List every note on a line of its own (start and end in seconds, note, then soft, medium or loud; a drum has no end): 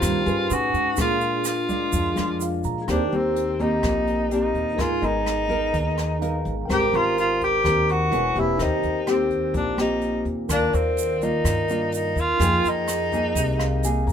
0.00 0.24 G2 medium
0.00 0.48 G2 medium
0.00 0.22 D#3 medium
0.00 0.22 A#3 medium
0.00 0.23 C4 medium
0.00 0.46 D#4 medium
0.00 0.54 F4 loud
0.00 0.46 G4 medium
0.00 0.47 A#4 medium
0.00 0.48 C5 medium
0.00 0.49 G5 medium
0.00 kick medium
0.00 cross-stick medium
0.00 closed hi-hat soft
0.00 shaker medium
0.26 0.49 G2 medium
0.26 0.94 C#4 medium
0.26 0.94 G#4 medium
0.26 0.94 B4 medium
0.26 closed hi-hat soft
0.26 shaker soft
0.50 0.73 A2 medium
0.50 0.98 C#4 soft
0.50 0.99 D#4 medium
0.50 0.99 F#4 loud
0.50 0.99 B4 soft
0.50 0.99 G#5 soft
0.50 closed hi-hat soft
0.50 shaker medium
0.74 0.96 G#2 medium
0.74 kick soft
0.74 closed hi-hat soft
0.74 shaker soft
0.96 1.89 A#2 loud
0.96 1.91 A#2 medium
0.96 1.46 G#3 medium
0.96 2.83 D4 medium
0.96 2.61 D4 medium
0.96 1.46 D4 medium
0.96 2.85 G#4 soft
0.96 kick medium
0.96 cross-stick medium
0.96 closed hi-hat soft
0.96 shaker medium
1.00 1.46 F4 medium
1.00 1.44 F4 medium
1.00 2.86 A#4 soft
1.00 2.41 F5 medium
1.21 closed hi-hat soft
1.21 shaker soft
1.45 2.61 F4 medium
1.45 cross-stick medium
1.45 closed hi-hat soft
1.45 shaker medium
1.69 2.13 G#3 medium
1.69 2.13 D4 medium
1.69 2.13 F4 medium
1.69 kick soft
1.69 closed hi-hat soft
1.69 shaker soft
1.92 2.15 F2 medium
1.92 2.85 F3 soft
1.92 kick medium
1.92 closed hi-hat soft
1.92 shaker medium
2.15 2.62 F2 medium
2.15 2.84 G#3 medium
2.15 2.84 D4 medium
2.15 2.84 F4 medium
2.15 cross-stick medium
2.15 closed hi-hat soft
2.15 shaker soft
2.41 2.64 F5 soft
2.41 closed hi-hat soft
2.41 shaker medium
2.64 2.87 A#2 medium
2.64 2.87 A#5 medium
2.64 kick soft
2.64 closed hi-hat soft
2.64 shaker soft
2.82 2.89 G#4 medium
2.87 3.11 D#2 medium
2.87 3.81 D#3 soft
2.87 3.02 A#3 soft
2.87 3.02 C4 medium
2.87 3.17 D4 medium
2.87 4.73 D#4 soft
2.87 3.02 G4 medium
2.87 4.76 G4 medium
2.87 4.75 A#4 soft
2.87 4.77 C5 soft
2.87 kick medium
2.87 cross-stick medium
2.87 closed hi-hat soft
2.93 4.77 G5 medium
3.12 3.80 D#2 medium
3.12 3.56 A#3 soft
3.12 3.56 C4 medium
3.12 3.63 C4 medium
3.12 3.56 G4 medium
3.12 closed hi-hat soft
3.36 closed hi-hat soft
3.59 4.27 A#3 medium
3.59 4.28 C4 medium
3.59 4.32 D#4 medium
3.59 4.28 G4 medium
3.59 kick soft
3.59 closed hi-hat soft
3.83 4.51 A#1 medium
3.83 4.77 A#2 medium
3.83 kick medium
3.83 cross-stick medium
3.83 closed hi-hat soft
4.07 closed hi-hat soft
4.31 4.77 A#3 medium
4.31 4.77 C4 medium
4.31 4.82 D#4 medium
4.31 4.77 G4 medium
4.31 closed hi-hat soft
4.55 4.77 D#2 medium
4.55 kick soft
4.55 closed hi-hat soft
4.74 5.71 G#3 soft
4.74 4.92 B3 soft
4.74 6.63 D#4 soft
4.74 4.93 D#4 medium
4.74 6.75 G#4 medium
4.74 6.64 A#4 soft
4.78 5.01 G#1 medium
4.78 5.06 F4 loud
4.78 4.93 A#4 medium
4.78 6.66 G#5 medium
4.78 kick medium
4.78 cross-stick medium
4.78 closed hi-hat soft
5.02 5.70 G#1 medium
5.02 5.46 B3 medium
5.02 5.46 D#4 medium
5.02 6.47 D#4 loud
5.02 5.46 A#4 medium
5.02 closed hi-hat soft
5.26 cross-stick medium
5.26 closed hi-hat soft
5.48 6.17 B3 medium
5.48 6.17 D#4 medium
5.48 6.17 A#4 medium
5.48 kick soft
5.48 closed hi-hat soft
5.73 6.41 D#2 medium
5.73 6.66 D#3 medium
5.73 kick medium
5.73 closed hi-hat soft
5.97 6.20 A#5 soft
5.97 cross-stick medium
5.97 closed hi-hat soft
6.22 6.54 B3 medium
6.22 6.54 D#4 medium
6.22 6.54 A#4 medium
6.22 6.66 F5 medium
6.22 closed hi-hat soft
6.45 6.68 G#1 medium
6.45 kick soft
6.45 closed hi-hat soft
6.65 6.92 G#1 medium
6.65 7.62 G#3 soft
6.65 6.83 C4 soft
6.65 6.83 G4 medium
6.65 8.09 A#4 soft
6.65 8.07 G5 soft
6.65 kick medium
6.70 6.97 G4 loud
6.70 6.84 A#4 medium
6.70 8.17 A#4 loud
6.70 8.10 C5 soft
6.70 8.11 A#5 medium
6.70 cross-stick medium
6.70 closed hi-hat soft
6.92 7.61 G#1 medium
6.92 7.60 C4 medium
6.92 7.61 G4 medium
6.92 7.61 A#4 medium
6.92 closed hi-hat soft
6.96 7.18 F4 medium
7.18 7.40 F4 medium
7.18 closed hi-hat soft
7.41 7.92 G4 loud
7.41 kick soft
7.41 closed hi-hat soft
7.64 8.09 D#2 medium
7.64 8.10 D#3 medium
7.64 8.10 C4 medium
7.64 8.10 G4 medium
7.64 8.10 A#4 medium
7.64 kick medium
7.64 cross-stick medium
7.64 closed hi-hat soft
7.89 8.41 F#4 loud
7.89 closed hi-hat soft
8.11 8.34 E1 medium
8.11 8.32 B3 medium
8.11 8.33 C#4 medium
8.11 8.59 E4 soft
8.11 8.33 G#4 medium
8.11 8.59 B4 soft
8.11 8.56 B4 medium
8.11 8.60 C#5 soft
8.11 8.61 G#5 medium
8.11 closed hi-hat soft
8.35 8.58 E1 medium
8.35 9.03 A#3 medium
8.35 9.04 C4 medium
8.35 8.64 E4 medium
8.35 9.04 G4 medium
8.35 kick soft
8.35 closed hi-hat soft
8.57 8.82 D#2 medium
8.57 9.52 D#3 soft
8.57 10.45 D#4 soft
8.57 10.22 G4 medium
8.57 10.46 A#4 soft
8.57 kick medium
8.57 cross-stick medium
8.57 closed hi-hat soft
8.61 9.09 D#4 medium
8.61 10.47 C5 soft
8.61 10.48 G5 medium
8.83 9.51 D#2 medium
8.83 closed hi-hat soft
9.07 9.75 A#3 soft
9.07 9.75 C4 medium
9.07 9.53 C4 medium
9.07 9.75 G4 medium
9.07 cross-stick medium
9.07 closed hi-hat soft
9.30 kick soft
9.30 closed hi-hat soft
9.54 10.22 A#1 medium
9.54 10.47 A#2 medium
9.54 9.78 D4 medium
9.54 kick medium
9.54 closed hi-hat soft
9.77 10.48 A#3 medium
9.77 10.48 C4 medium
9.77 10.24 D#4 medium
9.77 10.48 G4 medium
9.77 cross-stick medium
9.77 closed hi-hat soft
10.01 closed hi-hat soft
10.25 10.48 D#2 medium
10.25 kick soft
10.25 closed hi-hat soft
10.49 10.72 D#2 medium
10.49 11.43 D#3 soft
10.49 11.18 A#3 soft
10.49 11.18 D4 medium
10.49 10.76 D4 medium
10.49 11.18 F4 medium
10.49 12.36 A#4 soft
10.49 12.47 A#4 loud
10.49 12.38 D5 soft
10.49 kick medium
10.49 cross-stick medium
10.49 closed hi-hat soft
10.49 shaker medium
10.53 12.38 F5 medium
10.73 11.41 D#2 medium
10.73 11.25 C4 medium
10.73 closed hi-hat soft
10.73 shaker soft
10.97 closed hi-hat soft
10.97 shaker medium
11.21 11.66 A#3 medium
11.21 11.94 D#4 medium
11.21 11.66 F4 medium
11.21 kick soft
11.21 closed hi-hat soft
11.21 shaker soft
11.44 12.13 G2 medium
11.44 12.38 D#3 medium
11.44 kick medium
11.44 cross-stick medium
11.44 closed hi-hat soft
11.44 shaker medium
11.68 12.37 A#3 medium
11.68 12.37 D4 medium
11.68 12.38 F4 medium
11.68 closed hi-hat soft
11.68 shaker soft
11.92 12.21 D#4 medium
11.92 closed hi-hat soft
11.92 shaker medium
12.16 12.39 D#2 medium
12.16 kick soft
12.16 closed hi-hat soft
12.16 shaker soft
12.20 12.70 F4 loud
12.37 12.62 F2 medium
12.37 13.33 F3 medium
12.37 12.88 A#3 soft
12.37 14.13 D#4 soft
12.37 12.88 D#4 medium
12.37 14.13 G#4 soft
12.37 12.88 G#4 medium
12.37 14.13 G#4 medium
12.37 14.13 A#4 soft
12.37 kick medium
12.37 cross-stick medium
12.37 closed hi-hat soft
12.42 14.13 G5 medium
12.42 shaker medium
12.64 closed hi-hat soft
12.64 shaker soft
12.69 14.09 D#4 loud
12.88 cross-stick medium
12.88 closed hi-hat soft
12.88 shaker medium
13.12 13.80 A#3 medium
13.12 13.80 D#4 medium
13.12 13.81 G#4 medium
13.12 kick soft
13.12 closed hi-hat soft
13.12 shaker soft
13.35 14.03 C2 medium
13.35 14.13 C3 medium
13.35 kick medium
13.35 closed hi-hat soft
13.35 shaker medium
13.59 13.81 F5 soft
13.59 cross-stick medium
13.59 closed hi-hat soft
13.59 shaker soft
13.83 14.13 A#3 medium
13.83 14.13 D#4 medium
13.83 14.13 G#4 medium
13.83 14.06 G#5 medium
13.83 closed hi-hat soft
13.83 shaker medium
14.07 14.13 F2 medium
14.07 14.13 A#5 soft
14.07 kick soft
14.07 closed hi-hat soft
14.07 shaker soft